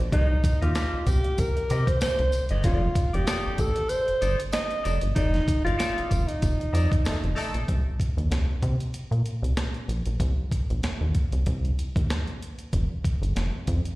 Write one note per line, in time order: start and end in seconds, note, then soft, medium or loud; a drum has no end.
0.12 0.37 C2 medium
0.12 0.64 D#4 loud
0.12 0.27 G4 medium
0.12 0.27 A#4 medium
0.12 0.27 D#5 medium
0.12 kick loud
0.12 closed hi-hat medium
0.43 muted clean electric guitar stroke soft
0.43 kick loud
0.43 closed hi-hat medium
0.43 tambourine soft
0.61 0.73 D#2 medium
0.61 1.09 F4 medium
0.61 0.71 G4 medium
0.61 0.71 A#4 medium
0.61 0.70 D#5 medium
0.61 closed hi-hat soft
0.75 1.05 G4 medium
0.75 1.05 A#4 medium
0.75 1.05 D#5 loud
0.75 snare loud
0.75 closed hi-hat medium
0.75 tambourine medium
0.93 0.98 C2 soft
1.07 1.21 C2 medium
1.07 1.41 G4 loud
1.07 muted clean electric guitar stroke soft
1.07 kick medium
1.07 closed hi-hat medium
1.07 tambourine medium
1.24 muted clean electric guitar stroke soft
1.24 closed hi-hat soft
1.38 1.52 C2 medium
1.38 1.89 A#4 loud
1.38 kick medium
1.38 closed hi-hat medium
1.38 tambourine medium
1.57 muted clean electric guitar stroke soft
1.57 closed hi-hat soft
1.70 1.84 C3 loud
1.70 1.84 G4 medium
1.70 1.85 A#4 medium
1.70 1.85 D#5 loud
1.70 closed hi-hat medium
1.70 tambourine medium
1.87 2.01 C5 loud
1.87 muted clean electric guitar stroke soft
1.87 kick loud
1.87 closed hi-hat medium
2.01 2.09 C2 soft
2.01 2.47 C5 loud
2.01 muted clean electric guitar stroke soft
2.01 snare loud
2.01 closed hi-hat medium
2.01 tambourine medium
2.19 2.30 C2 medium
2.19 muted clean electric guitar stroke medium
2.19 closed hi-hat soft
2.32 closed hi-hat medium
2.32 tambourine medium
2.49 2.62 G1 medium
2.49 2.62 G4 medium
2.49 2.62 A#4 medium
2.49 2.62 D#5 medium
2.49 closed hi-hat medium
2.63 2.89 F1 loud
2.63 2.86 D#4 medium
2.63 3.16 F4 loud
2.63 2.82 A4 medium
2.63 2.81 D5 medium
2.63 kick loud
2.63 closed hi-hat medium
2.63 tambourine soft
2.82 muted clean electric guitar stroke medium
2.95 muted clean electric guitar stroke soft
2.95 kick loud
2.95 closed hi-hat medium
2.95 tambourine soft
3.13 3.25 F1 loud
3.13 3.23 D#4 soft
3.13 3.61 G4 medium
3.13 3.23 A4 medium
3.13 3.22 D5 medium
3.13 closed hi-hat soft
3.27 3.56 D#4 medium
3.27 3.56 A4 medium
3.27 3.57 D5 medium
3.27 snare loud
3.27 closed hi-hat medium
3.27 tambourine medium
3.46 3.51 A1 soft
3.58 3.73 A1 loud
3.58 3.91 A4 loud
3.58 muted clean electric guitar stroke soft
3.58 kick medium
3.58 closed hi-hat medium
3.58 tambourine medium
3.76 muted clean electric guitar stroke medium
3.76 closed hi-hat medium
3.89 4.39 C5 loud
3.89 closed hi-hat medium
3.89 tambourine medium
4.07 4.14 G1 medium
4.07 muted clean electric guitar stroke soft
4.07 closed hi-hat soft
4.21 4.36 G1 medium
4.21 4.36 D#4 medium
4.21 4.36 A4 loud
4.21 4.36 D5 loud
4.21 closed hi-hat medium
4.21 tambourine medium
4.39 muted clean electric guitar stroke soft
4.39 closed hi-hat medium
4.53 4.98 D#5 loud
4.53 muted clean electric guitar stroke soft
4.53 snare loud
4.53 closed hi-hat medium
4.53 tambourine medium
4.71 muted clean electric guitar stroke soft
4.71 closed hi-hat soft
4.83 4.99 F1 medium
4.83 4.98 D#4 medium
4.83 4.99 A4 medium
4.83 4.99 D5 loud
4.83 closed hi-hat medium
4.83 tambourine medium
5.01 5.13 G1 medium
5.01 muted clean electric guitar stroke medium
5.01 closed hi-hat medium
5.15 5.41 F1 loud
5.15 5.61 D#4 loud
5.15 5.30 D#4 medium
5.15 5.31 A4 medium
5.15 5.31 D5 medium
5.15 kick medium
5.15 closed hi-hat medium
5.15 tambourine soft
5.34 muted clean electric guitar stroke soft
5.34 snare soft
5.34 closed hi-hat soft
5.47 muted clean electric guitar stroke soft
5.47 kick loud
5.47 closed hi-hat medium
5.47 tambourine soft
5.64 5.76 G1 medium
5.64 5.74 D#4 soft
5.64 6.29 F4 loud
5.64 5.74 A4 medium
5.64 5.74 D5 medium
5.64 closed hi-hat soft
5.78 6.07 D#4 medium
5.78 6.08 A4 medium
5.78 6.08 D5 loud
5.78 snare medium
5.78 closed hi-hat medium
5.78 tambourine medium
5.97 6.02 F1 soft
5.97 closed hi-hat soft
6.10 6.25 F1 medium
6.10 muted clean electric guitar stroke soft
6.10 kick medium
6.10 closed hi-hat medium
6.10 tambourine medium
6.27 7.36 D#4 medium
6.27 muted clean electric guitar stroke medium
6.27 closed hi-hat medium
6.42 6.56 F1 loud
6.42 kick medium
6.42 closed hi-hat medium
6.42 tambourine soft
6.60 muted clean electric guitar stroke soft
6.60 closed hi-hat soft
6.73 6.87 F2 loud
6.73 6.87 D#4 medium
6.73 6.88 A4 medium
6.73 6.88 D5 medium
6.73 closed hi-hat medium
6.73 tambourine medium
6.91 muted clean electric guitar stroke soft
6.91 kick loud
6.91 closed hi-hat medium
7.05 7.12 F1 soft
7.05 7.17 A3 medium
7.05 7.17 D#4 medium
7.05 7.17 A4 medium
7.05 muted clean electric guitar stroke soft
7.05 snare loud
7.05 closed hi-hat medium
7.05 tambourine medium
7.22 7.34 F1 medium
7.22 muted clean electric guitar stroke soft
7.22 closed hi-hat soft
7.35 7.56 A3 loud
7.35 7.47 D#4 medium
7.35 7.56 D#4 loud
7.35 7.56 A4 loud
7.35 7.47 A4 medium
7.35 7.48 D5 medium
7.35 open hi-hat medium
7.35 tambourine medium
7.53 7.65 A#1 medium
7.53 7.63 D#4 soft
7.53 7.63 A4 medium
7.53 7.62 D5 medium
7.53 closed hi-hat medium
7.68 7.82 C2 loud
7.68 kick medium
7.68 closed hi-hat medium
8.00 kick medium
8.00 closed hi-hat medium
8.17 8.28 D#2 medium
8.17 closed hi-hat soft
8.31 8.45 C2 medium
8.31 snare medium
8.31 closed hi-hat medium
8.63 8.76 C3 loud
8.63 kick medium
8.63 closed hi-hat medium
8.80 closed hi-hat soft
8.94 closed hi-hat medium
9.11 9.22 A#2 medium
9.11 closed hi-hat soft
9.26 closed hi-hat medium
9.43 9.54 C2 medium
9.43 closed hi-hat medium
9.57 snare loud
9.57 closed hi-hat medium
9.74 closed hi-hat soft
9.88 10.02 A#1 medium
9.88 closed hi-hat medium
10.06 10.17 A#1 medium
10.06 closed hi-hat medium
10.20 10.34 C2 loud
10.20 kick medium
10.20 closed hi-hat medium
10.52 kick medium
10.52 closed hi-hat medium
10.70 10.81 A#1 medium
10.70 closed hi-hat soft
10.83 10.91 D#2 soft
10.83 snare loud
10.83 closed hi-hat medium
11.01 11.12 D#2 medium
11.15 kick medium
11.15 closed hi-hat medium
11.32 11.44 C2 medium
11.32 closed hi-hat medium
11.46 11.72 C2 medium
11.46 kick medium
11.46 closed hi-hat medium
11.65 closed hi-hat soft
11.79 closed hi-hat medium
11.96 12.07 D#2 medium
11.96 kick loud
11.96 closed hi-hat medium
12.10 snare loud
12.10 closed hi-hat medium
12.27 closed hi-hat soft
12.42 closed hi-hat medium
12.59 closed hi-hat soft
12.73 12.87 F1 loud
12.73 kick medium
12.73 closed hi-hat medium
13.05 kick medium
13.05 closed hi-hat medium
13.22 13.33 G1 medium
13.22 closed hi-hat soft
13.36 13.50 F1 loud
13.36 snare medium
13.36 closed hi-hat medium
13.67 13.82 F2 loud
13.67 kick medium
13.67 closed hi-hat medium
13.85 closed hi-hat medium